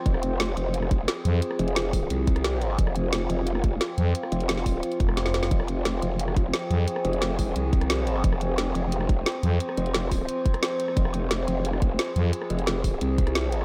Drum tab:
HH |x-x-x-x-x-x-x-x-|x-xxx-o-x-xxx-x-|x-x-x-x-x-x-x-x-|x-xxx-o-xxx-x-x-|
SD |-r--o----r--o---|-r--o------ro--r|-r--o----r--o---|-r--oo-----roooo|
BD |o---------o-----|------o---o-----|o---------o-----|------o---o-----|

HH |x-x-x-x-x-x-x-x-|x-xxx-o-x-xxx-x-|x-x-x-x-x-x-x-x-|x-xxx-o-x-xxx-x-|
SD |-r--o----r--o---|-r--o------ro--r|-r--o----r--o---|-r--o------ro--r|
BD |o---------o-----|------o---o-----|o---------o-----|------o---o-----|

HH |x-x-x-x-x-x-x-x-|x-xxx-o-x-xxx-x-|
SD |-r--o----r--o---|-r--o------ro--r|
BD |o---------o-----|------o---o-----|